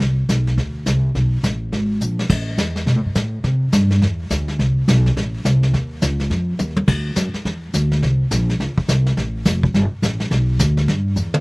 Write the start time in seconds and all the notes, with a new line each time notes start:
0.00 C2, brush sweep, snare
0.29 B1, kick, snare, hi-hat pedal
0.47 snare
0.57 D2, brush sweep, kick, snare
0.86 C2, kick, snare, hi-hat pedal
1.15 B1, brush sweep, kick, snare
1.43 A1, kick, snare, hi-hat pedal
1.72 G#1, brush sweep, kick, snare
2.01 A#1, hi-hat pedal
2.19 snare
2.29 A1, brush sweep, kick, snare, crash
2.58 E2, kick, snare, hi-hat pedal
2.76 snare
2.86 B2, brush sweep, kick, snare
2.96 A2
3.05 G2
3.15 A2, kick, snare, hi-hat pedal
3.44 C3, brush sweep, kick, snare
3.72 G2, kick, snare, hi-hat pedal
3.91 snare
4.02 E2, brush sweep, kick, snare
4.30 D2, kick, snare, hi-hat pedal
4.48 snare
4.59 C2, brush sweep, kick, snare
4.88 B1, kick, snare, hi-hat pedal
5.06 snare
5.17 A1, brush sweep, kick, snare
5.45 C2, kick, snare, hi-hat pedal
5.63 snare
5.73 D#2, brush sweep, kick, snare
6.02 C#2, kick, snare, hi-hat pedal
6.20 snare
6.30 F2, brush sweep, kick, snare
6.59 D#2, hi-hat pedal, high tom
6.77 high tom
6.88 D2, brush sweep, kick, snare, crash
7.16 F#2, kick, snare, hi-hat pedal
7.34 muted upright bass stroke, snare
7.45 E2, brush sweep, kick, snare
7.74 D2, kick, snare, hi-hat pedal
7.92 snare
8.02 C2, brush sweep, kick, snare
8.31 A#1, kick, snare, hi-hat pedal
8.49 snare
8.60 C#2, brush sweep, kick, snare
8.77 muted upright bass stroke, kick
8.88 C2, kick, snare, hi-hat pedal
9.06 snare
9.17 A1, brush sweep, kick, snare
9.45 F1, kick, snare, hi-hat pedal
9.63 kick
9.74 G1, brush sweep, kick, snare
10.02 A1, kick, snare, hi-hat pedal
10.20 snare
10.31 B1, brush sweep, kick, snare
10.59 D2, kick, snare, hi-hat pedal
10.77 snare
10.88 G2, brush sweep, kick, snare
11.16 E2, hi-hat pedal
11.34 mid tom